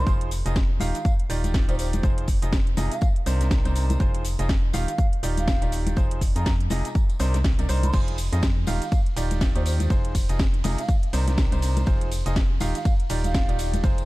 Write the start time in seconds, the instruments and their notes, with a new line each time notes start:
Already playing: flute C6
0.07 fm bass F1, grand piano F3 D#4 F4 G#4 C5, kick, tambourine, shaker
0.21 closed hi-hat
0.31 open hi-hat, tambourine, shaker
0.46 fm bass F1, grand piano F3 D#4 F4 G#4 D#5, closed hi-hat, tambourine, shaker
0.56 kick, snare, tambourine, shaker
0.80 fm bass D#1, grand piano D#3 D#4 F4 G4 F5, open hi-hat, tambourine, high conga, shaker
0.94 flute F5, closed hi-hat, tambourine, shaker
1.05 kick, tambourine, shaker
1.20 closed hi-hat
1.30 fm bass D#1, grand piano D#3 D#4 F4 G4 D5, open hi-hat, tambourine, shaker
1.44 closed hi-hat, tambourine, high conga, shaker
1.54 kick, snare, tambourine, shaker
1.69 fm bass D#1, grand piano D#3 D#4 F4 G4 D5, flute C5, closed hi-hat, tambourine
1.79 flute C5, open hi-hat, tambourine, shaker
1.93 closed hi-hat, tambourine, high conga, shaker
2.03 fm bass F1, grand piano F3 D#4 F4 G#4 C5, kick, tambourine, shaker
2.18 closed hi-hat
2.28 kick, open hi-hat, tambourine, shaker
2.42 fm bass F1, grand piano F3 D#4 F4 G#4 D#5, closed hi-hat, tambourine, shaker
2.53 kick, snare, tambourine, shaker
2.67 closed hi-hat
2.77 fm bass F1, grand piano C3 D#4 F4 G#4 D#5, open hi-hat, tambourine, high conga, shaker
2.92 flute F5, closed hi-hat, tambourine, shaker
3.01 kick, tambourine, shaker
3.16 closed hi-hat
3.26 fm bass C2, grand piano C3 D4 D#4 A#4 C5, open hi-hat, tambourine, shaker
3.41 snare, closed hi-hat, tambourine, high conga, shaker
3.51 kick, snare, tambourine, shaker
3.65 fm bass C2, grand piano C3 D4 D#4 A#4 C5, closed hi-hat, tambourine
3.76 open hi-hat, tambourine, shaker
3.90 closed hi-hat, tambourine, high conga, shaker
4.00 fm bass F1, grand piano F3 D#4 F4 G#4 C5, kick, tambourine, shaker
4.15 closed hi-hat
4.25 open hi-hat, tambourine, shaker
4.39 fm bass F1, grand piano F3 D#4 F4 G#4 D#5, closed hi-hat, tambourine, shaker
4.49 kick, snare, tambourine, shaker
4.73 fm bass D#1, grand piano D#3 D#4 F4 G4 F5, open hi-hat, tambourine, high conga, shaker
4.88 flute F5, closed hi-hat, tambourine, shaker
4.98 kick, tambourine, shaker
5.13 closed hi-hat
5.23 fm bass D#1, grand piano D#3 D#4 F4 G4 D5, open hi-hat, tambourine, shaker
5.37 flute F5, closed hi-hat, tambourine, high conga, shaker
5.48 kick, snare, tambourine, shaker
5.62 fm bass D#1, grand piano D#3 D#4 F4 G4 D5, closed hi-hat, tambourine
5.72 open hi-hat, tambourine, shaker
5.87 closed hi-hat, tambourine, high conga, shaker
5.96 fm bass F1, grand piano F3 D#4 F4 G#4 C5, kick, tambourine, shaker
6.11 closed hi-hat
6.21 kick, open hi-hat, tambourine, shaker
6.36 fm bass F2, grand piano F3 D#4 F4 G#4 D#5, flute A#5, closed hi-hat, tambourine, shaker
6.46 kick, snare, tambourine, shaker
6.60 closed hi-hat
6.70 fm bass F1, grand piano C3 D#4 F4 G#4 D#5, open hi-hat, tambourine, high conga, shaker
6.85 closed hi-hat, tambourine, shaker
6.95 kick, tambourine, shaker
7.09 closed hi-hat, tambourine
7.19 fm bass C2, grand piano C3 D4 D#4 A#4 C5, open hi-hat, tambourine, shaker
7.34 snare, closed hi-hat, tambourine, high conga, shaker
7.44 kick, snare, tambourine, shaker
7.59 fm bass C2, grand piano C3 D4 D#4 A#4 D5, closed hi-hat, tambourine
7.69 fm bass C2, grand piano D4 D#4 A#4 C5, open hi-hat, tambourine, shaker
7.83 flute C6, closed hi-hat, tambourine, high conga, shaker
7.93 fm bass F1, grand piano F3 D#4 F4 G#4 C5, kick, ride, tambourine, crash, shaker
8.08 closed hi-hat
8.18 open hi-hat, ride, tambourine, shaker
8.32 fm bass F2, grand piano F3 D#4 F4 G#4 D#5, closed hi-hat, tambourine, shaker
8.43 kick, snare, ride, tambourine, shaker
8.67 fm bass D#1, grand piano D#3 D#4 F4 G4 F5, open hi-hat, ride, tambourine, high conga, shaker
8.82 flute F5, closed hi-hat, tambourine, shaker
8.92 kick, ride, tambourine, shaker
9.06 closed hi-hat
9.16 fm bass D#1, grand piano D#3 D#4 F4 G4 D5, open hi-hat, ride, tambourine, shaker
9.31 closed hi-hat, tambourine, high conga, shaker
9.41 kick, snare, ride, tambourine, shaker
9.55 fm bass D#2, grand piano D#3 D#4 F4 G4 D5, flute C5, closed hi-hat, tambourine
9.66 flute C5, open hi-hat, ride, tambourine, shaker
9.80 closed hi-hat, tambourine, high conga, shaker
9.90 fm bass F1, grand piano F3 D#4 F4 G#4 C5, kick, ride, tambourine, shaker
10.05 closed hi-hat
10.15 kick, open hi-hat, ride, tambourine, shaker
10.29 fm bass F1, grand piano F3 D#4 F4 G#4 D#5, closed hi-hat, tambourine, shaker
10.39 kick, snare, ride, tambourine, shaker
10.54 closed hi-hat
10.64 fm bass F1, grand piano C3 D#4 F4 G#4 D#5, open hi-hat, ride, tambourine, high conga, shaker
10.78 flute F5, closed hi-hat, tambourine, shaker
10.88 kick, ride, tambourine, shaker
11.03 closed hi-hat
11.13 fm bass C2, grand piano C3 D4 D#4 A#4 C5, open hi-hat, ride, tambourine, shaker
11.27 snare, closed hi-hat, tambourine, high conga, shaker
11.38 kick, snare, ride, tambourine, shaker
11.52 fm bass C2, grand piano C3 D4 D#4 A#4 C5, closed hi-hat, tambourine
11.62 open hi-hat, ride, tambourine, shaker
11.77 closed hi-hat, tambourine, high conga, shaker
11.86 fm bass F1, grand piano F3 D#4 F4 G#4 C5, kick, ride, tambourine, shaker
12.01 closed hi-hat
12.12 open hi-hat, ride, tambourine, shaker
12.26 fm bass F1, grand piano F3 D#4 F4 G#4 D#5, closed hi-hat, tambourine, shaker
12.36 kick, snare, ride, tambourine, shaker
12.60 fm bass D#1, grand piano D#3 D#4 F4 G4 F5, open hi-hat, ride, tambourine, high conga, shaker
12.75 flute F5, closed hi-hat, tambourine, shaker
12.85 kick, ride, tambourine, shaker
13.00 closed hi-hat
13.10 fm bass D#1, grand piano D#3 D#4 F4 G4 D5, open hi-hat, ride, tambourine, shaker
13.24 flute F5, closed hi-hat, tambourine, high conga, shaker
13.34 kick, snare, ride, tambourine, shaker
13.49 fm bass D#1, grand piano D#3 D#4 F4 G4 D5, closed hi-hat, tambourine
13.59 open hi-hat, ride, tambourine, shaker
13.74 closed hi-hat, tambourine, high conga, shaker
13.83 fm bass F1, grand piano F3 D#4 F4 G#4 C5, kick, ride, tambourine, shaker
13.98 closed hi-hat, tambourine